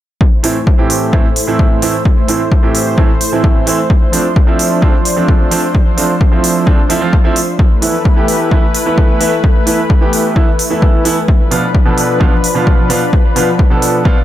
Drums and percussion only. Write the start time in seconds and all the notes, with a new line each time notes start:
0.21 kick
0.44 open hi-hat
0.67 kick
0.90 open hi-hat
1.13 kick
1.36 open hi-hat
1.59 kick
1.82 open hi-hat
2.05 kick
2.28 open hi-hat
2.52 kick
2.75 open hi-hat
2.98 kick
3.21 open hi-hat
3.44 kick
3.67 open hi-hat
3.90 kick
4.13 open hi-hat
4.36 kick
4.59 open hi-hat
4.82 kick
5.05 open hi-hat
5.28 kick
5.51 open hi-hat
5.75 kick
5.98 open hi-hat
6.21 kick
6.44 open hi-hat
6.67 kick
6.90 open hi-hat
7.13 kick
7.36 open hi-hat
7.59 kick
7.82 open hi-hat
8.05 kick
8.28 open hi-hat
8.51 kick
8.75 open hi-hat
8.98 kick
9.21 open hi-hat
9.44 kick
9.67 open hi-hat
9.90 kick
10.13 open hi-hat
10.36 kick
10.59 open hi-hat
10.82 kick
11.05 open hi-hat
11.28 kick
11.52 open hi-hat
11.75 kick
11.98 open hi-hat
12.21 kick
12.44 open hi-hat
12.67 kick
12.90 open hi-hat
13.13 kick
13.36 open hi-hat
13.59 kick
13.82 open hi-hat
14.05 kick